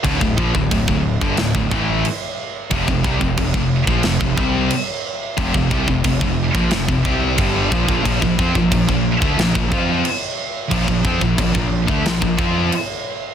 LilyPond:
<<
  \new Staff \with { instrumentName = "Distorted electric guitar" } { \clef bass \time 4/4 \key f \major \tempo 4 = 90 <d, a,>16 <d, a,>16 <bes, f>16 <d, a,>16 <d, a,>16 <d, a,>8 <g, d>16 <d, a,>16 <d, a,>16 <a, e a>8 r4 | <f, c>16 <f, c>16 <c g>16 <f, c>16 <f, c>16 <f, c>8 <bes, f>16 <f, c>16 <f, c>16 <c g c'>8 r4 | <f, c>16 <f, c>16 <c g>16 <f, c>16 <f, c>16 <f, c>8 <bes, f>16 <f, c>16 <f, c>16 <c g c'>8 <g, d g>8 <bes, f>16 <bes, f>16 | <bes, f>16 <bes, f>16 <f c'>16 <bes, f>16 <bes, f>16 <bes, f>8 <d a>16 <bes, f>16 <bes, f>16 <f c' f'>8 r4 |
<bes, f>16 <bes, f>16 <f c'>16 <bes, f>16 <bes, f>16 <bes, f>8 <d a>16 <bes, f>16 <bes, f>16 <f c' f'>8 r4 | }
  \new Staff \with { instrumentName = "Distorted electric guitar" } { \clef bass \time 4/4 \key f \major <d, a,>16 <d, a,>16 <bes, f>16 <d, a,>16 <d, a,>16 <d, a,>8 <g, d>16 <d, a,>16 <d, a,>16 <a, e a>8 r4 | <f, c>16 <f, c>16 <c g>16 <f, c>16 <f, c>16 <f, c>8 <bes, f>16 <f, c>16 <f, c>16 <c g c'>8 r4 | <f, c>16 <f, c>16 <c g>16 <f, c>16 <f, c>16 <f, c>8 <bes, f>16 <f, c>16 <f, c>16 <c g c'>8 <g, d g>8 <bes, f>16 <bes, f>16 | <bes, f>16 <bes, f>16 <f c'>16 <bes, f>16 <bes, f>16 <bes, f>8 <d a>16 <bes, f>16 <bes, f>16 <f c' f'>8 r4 |
<bes, f>16 <bes, f>16 <f c'>16 <bes, f>16 <bes, f>16 <bes, f>8 <d a>16 <bes, f>16 <bes, f>16 <f c' f'>8 r4 | }
  \new Staff \with { instrumentName = "Distorted electric guitar" } { \clef bass \time 4/4 \key f \major <d, a,>16 <d, a,>16 <bes, f>16 <d, a,>16 <d, a,>16 <d, a,>8 <g, d>16 <d, a,>16 <d, a,>16 <a, e a>8 r4 | <f, c>16 <f, c>16 <c g>16 <f, c>16 <f, c>16 <f, c>8 <bes, f>16 <f, c>16 <f, c>16 <c g c'>8 r4 | <f, c>16 <f, c>16 <c g>16 <f, c>16 <f, c>16 <f, c>8 <bes, f>16 <f, c>16 <f, c>16 <c g c'>8 <g, d g>8 <bes, f>16 <bes, f>16 | <bes, f>16 <bes, f>16 <f c'>16 <bes, f>16 <bes, f>16 <bes, f>8 <d a>16 <bes, f>16 <bes, f>16 <f c' f'>8 r4 |
<bes, f>16 <bes, f>16 <f c'>16 <bes, f>16 <bes, f>16 <bes, f>8 <d a>16 <bes, f>16 <bes, f>16 <f c' f'>8 r4 | }
  \new Staff \with { instrumentName = "Picked electric bass" } { \clef bass \time 4/4 \key f \major d,,16 d,,16 bes,,16 d,,16 d,,16 d,,8 g,,16 d,,16 d,,16 a,,8 r4 | f,,16 f,,16 c,16 f,,16 f,,16 f,,8 bes,,16 f,,16 f,,16 c,8 r4 | f,,16 f,,16 c,16 f,,16 f,,16 f,,8 bes,,16 f,,16 f,,16 c,8 g,,8 bes,,16 bes,,16 | bes,,16 bes,,16 f,16 bes,,16 bes,,16 bes,,8 d,16 bes,,16 bes,,16 f,8 r4 |
bes,,16 bes,,16 f,16 bes,,16 bes,,16 bes,,8 d,16 bes,,16 bes,,16 f,8 r4 | }
  \new DrumStaff \with { instrumentName = "Drums" } \drummode { \time 4/4 <cymc bd>16 bd16 bd16 bd16 <cymc bd>16 bd8 bd16 <cymc sn>16 bd16 bd8 cymc4 | <cymc bd>16 bd16 bd16 bd16 <cymc bd>16 bd8 bd16 <cymc sn>16 bd16 bd8 cymc4 | <cymc bd>16 bd16 bd16 bd16 <cymc bd>16 bd8 bd16 <cymc sn>16 bd16 bd8 <cymc bd>8 bd16 bd16 | <cymc bd>16 bd16 bd16 bd16 <cymc bd>16 bd8 bd16 <cymc sn>16 bd16 bd8 cymc4 |
<cymc bd>16 bd16 bd16 bd16 <cymc bd>16 bd8 bd16 <cymc sn>16 bd16 bd8 cymc4 | }
>>